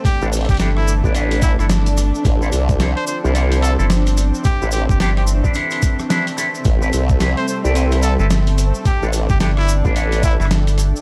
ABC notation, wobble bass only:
X:1
M:4/4
L:1/16
Q:"Swing 16ths" 1/4=109
K:Ephr
V:1 name="Wobble bass" clef=bass
z A,,,2 z4 A,,,4 z4 z | A,,,2 C,,3 z2 C,,4 z4 z | z A,,,2 z12 z | A,,,2 C,,3 z2 C,,4 z4 z |
z A,,,2 z4 A,,,4 z4 z |]